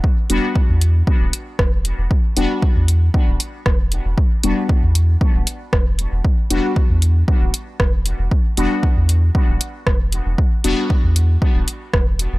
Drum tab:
HH |-x-x-x-x|-x-x-x-x|-x-x-x-x|-x-x-x-x|
SD |------r-|------r-|------r-|------r-|
BD |o-o-o-o-|o-o-o-o-|o-o-o-o-|o-o-o-o-|

HH |-x-x-x-x|-x-x-x-x|
SD |------r-|------r-|
BD |o-o-o-o-|o-o-o-o-|